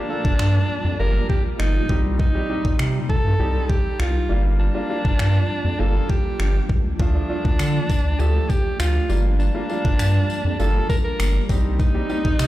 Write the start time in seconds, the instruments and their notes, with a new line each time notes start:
Already playing: ambient pad A#2 F3 G3 A#3 F4, alto saxophone D4, downlifter
0.09 grand piano A#3 D4 F4 A4
0.25 analog synth bass G1, kick
0.39 analog synth bass G2, finger snap
0.85 analog synth bass F2
0.99 analog synth bass G1, grand piano A#3 D4 F4 G4, alto saxophone A#4
1.30 alto saxophone G4, kick
1.59 analog synth bass G1, alto saxophone D#4, finger snap
1.89 analog synth bass C2, grand piano G3 C4 D#4 G4, ambient pad C4 D#4, kick
2.19 alto saxophone D#4, kick
2.34 grand piano G3 C4 D#4 G4
2.49 grand piano G3 C4 D#4 G4
2.65 analog synth bass C2, kick
2.79 analog synth bass C3, finger snap
3.10 alto saxophone A4, kick
3.25 analog synth bass G2
3.39 analog synth bass C2, grand piano G3 C4 D#4 G4
3.70 alto saxophone G4, kick
4.00 analog synth bass C2, alto saxophone F4, finger snap
4.29 analog synth bass G1, ambient pad F3 G3 A#3 D4 F4, grand piano G3 A#3 D4 F4
4.60 alto saxophone D4
4.74 grand piano G3 A#3 D4 F4
4.89 grand piano G3 A#3 D4 F4
5.05 analog synth bass G1, kick
5.19 analog synth bass G2, finger snap
5.65 analog synth bass F2
5.79 analog synth bass G1, grand piano G3 A#3 D4 F4, alto saxophone A4
6.10 alto saxophone G4, kick
6.40 analog synth bass G1, finger snap
6.69 analog synth bass C#2, kick
6.99 analog synth bass D2, grand piano F3 A3 D4 F4, ambient pad A3 D4, alto saxophone D4, kick
7.14 grand piano F3 A3 D4 F4
7.29 grand piano F3 A3 D4 F4
7.45 analog synth bass D2, kick
7.59 analog synth bass D3, finger snap, tambourine
7.90 kick, tambourine
8.05 analog synth bass D2
8.19 analog synth bass D2, grand piano F3 A3 D4 G4, alto saxophone A4, tambourine
8.50 alto saxophone G4, kick, tambourine
8.80 analog synth bass D2, alto saxophone F4, finger snap, tambourine
9.09 analog synth bass G1, grand piano G3 A#3 D4 F4, ambient pad G3 A#3 G4, tambourine
9.40 alto saxophone D4, tambourine
9.54 grand piano G3 A#3 D4 F4
9.69 grand piano G3 A#3 D4 F4, tambourine
9.85 analog synth bass G1, kick
9.99 analog synth bass G2, finger snap, tambourine
10.30 tambourine
10.45 analog synth bass F2
10.59 analog synth bass G1, grand piano G3 A#3 D4 F4, alto saxophone A4, tambourine
10.90 alto saxophone A#4, kick, tambourine
11.05 alto saxophone A#4
11.20 analog synth bass G1, finger snap, tambourine
11.49 analog synth bass C2, grand piano G3 C4 D#4 G4, ambient pad C4 D#4, kick, tambourine
11.80 alto saxophone D#4, kick, tambourine
11.94 grand piano G3 C4 D#4 G4
12.09 grand piano G3 C4 D#4 G4, tambourine
12.25 analog synth bass C2, kick
12.39 analog synth bass C3, finger snap, tambourine